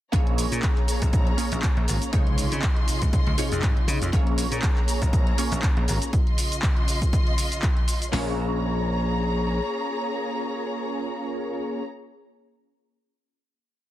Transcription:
0.12 A#1 A#3 C#4 F4 G#4 C#5 A#5, kick, closed hi-hat, cabasa
0.27 closed hi-hat
0.38 open hi-hat, cabasa
0.52 A#2, closed hi-hat, cabasa
0.63 kick, clap, closed hi-hat, cabasa
0.76 clap, closed hi-hat
0.88 open hi-hat, cabasa
1.02 A#1, kick, closed hi-hat, cabasa
1.13 kick, closed hi-hat, cabasa
1.27 closed hi-hat
1.37 A#3 C#4 F4 G#4 C#5, open hi-hat, cabasa
1.52 A#1, closed hi-hat, cabasa
1.63 kick, clap, closed hi-hat, cabasa
1.77 A#1, closed hi-hat
1.88 G#1, open hi-hat, cabasa
2.02 closed hi-hat, cabasa
2.12 C#2 C3 D#4 F4 G#4 C#5 D#5 C6, kick, closed hi-hat, cabasa
2.27 closed hi-hat
2.38 open hi-hat, cabasa
2.52 C#3, closed hi-hat, cabasa
2.62 kick, clap, closed hi-hat, cabasa
2.77 closed hi-hat
2.88 muted slap bass stroke, open hi-hat, cabasa
3.02 C#2, kick, closed hi-hat, cabasa
3.13 kick, closed hi-hat, cabasa
3.27 C#2, closed hi-hat
3.37 C3 D#4 F4 G#4 C#5, open hi-hat, cabasa
3.52 F2, closed hi-hat, cabasa
3.62 G#2, kick, clap, closed hi-hat, cabasa
3.77 closed hi-hat
3.88 C#3, open hi-hat, cabasa
4.02 F2, closed hi-hat, cabasa
4.12 A#1 A#3 C#4 F4 G#4 C#5 A#5, kick, closed hi-hat, cabasa
4.27 closed hi-hat
4.38 open hi-hat, cabasa
4.51 A#2, closed hi-hat, cabasa
4.62 kick, clap, closed hi-hat, cabasa
4.76 clap, closed hi-hat
4.88 open hi-hat, cabasa
5.02 A#1, kick, closed hi-hat, cabasa
5.13 kick, closed hi-hat, cabasa
5.27 closed hi-hat
5.37 A#3 C#4 F4 G#4 C#5, open hi-hat, cabasa
5.52 A#1, closed hi-hat, cabasa
5.62 kick, clap, closed hi-hat, cabasa
5.77 A#1, closed hi-hat
5.88 G#1, open hi-hat, cabasa
6.02 closed hi-hat, cabasa
6.13 C#3 F4 D#5 C6, kick, closed hi-hat, cabasa
6.27 closed hi-hat
6.38 open hi-hat, cabasa
6.52 closed hi-hat, cabasa
6.63 kick, clap, closed hi-hat, cabasa
6.77 closed hi-hat
6.88 open hi-hat, cabasa
7.02 kick, closed hi-hat, cabasa
7.13 kick, closed hi-hat, cabasa
7.27 closed hi-hat
7.38 open hi-hat, cabasa
7.52 closed hi-hat, cabasa
7.62 kick, clap, closed hi-hat, cabasa
7.77 closed hi-hat
7.88 open hi-hat, cabasa
8.02 closed hi-hat, cabasa
8.12 A#1 A#3 C#4 F4 G#4 C#5 A#5, snare, open hi-hat

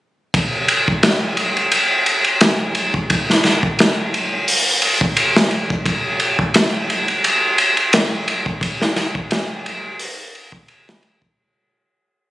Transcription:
0.34 kick, ride
0.68 ride
0.88 kick
1.03 snare, ride
1.37 ride
1.57 ride
1.72 ride
2.06 ride
2.25 ride
2.41 snare, ride
2.75 ride
2.94 kick
3.10 kick, ride
3.30 snare
3.44 snare, ride
3.63 kick
3.79 snare, ride
4.14 ride
4.48 open hi-hat
4.82 ride
5.01 kick
5.17 ride
5.37 snare
5.51 ride
5.70 kick
5.86 kick, ride
6.20 ride
6.39 kick
6.54 snare, ride
6.90 ride
7.08 ride
7.24 ride
7.58 ride
7.77 ride
7.93 snare, ride
8.28 ride
8.46 kick
8.61 kick, ride
8.82 snare
8.96 snare, ride
9.15 kick
9.31 snare, ride
9.66 ride
9.99 open hi-hat
10.35 ride
10.52 kick
10.68 ride
10.89 snare
11.03 ride
11.22 kick

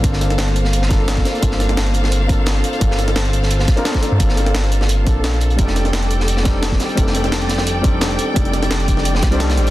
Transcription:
Already playing: A#3 C4 D4 F4 A4 C5 F5
0.00 G1 A#3 C4 D4, kick, closed hi-hat
0.05 F4 A4
0.13 snare
0.21 snare, closed hi-hat
0.30 G1, snare, closed hi-hat
0.38 snare, closed hi-hat
0.48 closed hi-hat
0.56 closed hi-hat
0.65 snare
0.73 closed hi-hat
0.82 snare
0.88 A#3 C4 D4 F4, kick, snare, closed hi-hat
0.93 A4
1.08 snare, closed hi-hat
1.17 kick, snare
1.25 snare, closed hi-hat
1.35 closed hi-hat
1.40 G1 A#3 C4 D4 F4, kick, closed hi-hat
1.45 A4
1.51 snare
1.60 snare, closed hi-hat
1.69 G1, snare, closed hi-hat
1.77 snare, closed hi-hat
1.86 snare, closed hi-hat
1.94 closed hi-hat
2.04 snare
2.12 closed hi-hat
2.27 A#3 C4 D4 F4, kick, closed hi-hat
2.32 A4
2.46 snare, closed hi-hat
2.55 closed hi-hat
2.64 closed hi-hat
2.73 closed hi-hat
2.79 G1 A#3 C4 D4 F4, kick, closed hi-hat
2.84 A4
2.91 snare
2.98 snare, closed hi-hat
3.08 G1, snare, closed hi-hat
3.16 snare, closed hi-hat
3.25 closed hi-hat
3.33 closed hi-hat
3.43 snare
3.51 closed hi-hat
3.59 snare
3.68 kick, snare, closed hi-hat
3.76 A#3 C4 D4 F4 A#4, closed hi-hat
3.84 A#3 C4 D4 F4 A4, snare, closed hi-hat
3.94 kick, snare
4.02 snare, closed hi-hat
4.12 G2
4.18 G1 A#3 C4 D4 F4, kick, closed hi-hat
4.23 A4
4.29 snare
4.37 snare, closed hi-hat
4.46 snare, closed hi-hat
4.54 snare, closed hi-hat
4.64 snare, closed hi-hat
4.72 closed hi-hat
4.81 snare
4.89 closed hi-hat
5.04 A#1 A#3 C4 D4 F4, kick, closed hi-hat
5.09 A4
5.24 snare, closed hi-hat
5.33 closed hi-hat
5.40 closed hi-hat
5.50 closed hi-hat
5.56 F1 G3 C4 D4 D#4 D5 G5, kick, closed hi-hat
5.61 A4
5.68 snare
5.76 snare, closed hi-hat
5.85 F1, snare, closed hi-hat
5.93 snare, closed hi-hat
6.02 closed hi-hat
6.10 closed hi-hat
6.20 snare
6.28 closed hi-hat
6.37 snare
6.43 G3 C4 D4 D#4, kick, snare, closed hi-hat
6.48 A4
6.63 snare, closed hi-hat
6.72 kick, snare
6.80 snare, closed hi-hat
6.89 closed hi-hat
6.95 F1 G3 C4 D4 D#4, kick, closed hi-hat
7.00 A4
7.07 snare
7.14 snare, closed hi-hat
7.24 F1, snare, closed hi-hat
7.32 snare, closed hi-hat
7.41 snare, closed hi-hat
7.49 snare, closed hi-hat
7.58 snare, closed hi-hat
7.67 closed hi-hat
7.82 G3 C4 D4 D#4, kick, closed hi-hat
7.87 A4
8.01 snare, closed hi-hat
8.10 closed hi-hat
8.19 closed hi-hat
8.34 F1 G3 C4 D4 D#4, kick, closed hi-hat
8.39 A4
8.45 closed hi-hat
8.53 snare, closed hi-hat
8.63 F1, snare, closed hi-hat
8.71 snare, closed hi-hat
8.80 closed hi-hat
8.88 kick, closed hi-hat
8.97 snare
9.05 F5, closed hi-hat
9.15 snare
9.22 C2, kick, snare, closed hi-hat
9.31 G3 C4 D4 D#4 C5, closed hi-hat
9.39 G3 C4 D4 D#4 A4, snare, closed hi-hat
9.49 snare, closed hi-hat
9.57 A1, snare, closed hi-hat
9.67 closed hi-hat

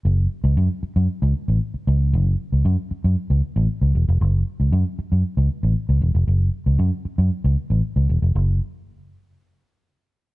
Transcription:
0.05 F#1
0.44 C#2
0.57 F#2
0.83 muted fingered electric bass stroke
0.96 F#2
1.22 C#2
1.48 A1
1.74 muted fingered electric bass stroke
1.87 C#2
2.13 F#1
2.52 C#2
2.65 F#2
2.91 muted fingered electric bass stroke
3.04 F#2
3.30 C#2
3.56 A1
3.82 C#2
3.95 E1
4.08 F1
4.21 F#1
4.60 C#2
4.72 F#2
4.99 muted fingered electric bass stroke
5.12 F#2
5.37 C#2
5.63 A1
5.89 C#2
6.01 E1
6.15 F1
6.27 F#1
6.66 C#2
6.79 F#2
7.05 muted fingered electric bass stroke
7.18 F#2
7.44 C#2
7.70 A1
7.96 C#2
8.09 E1
8.22 F1
8.35 F#1

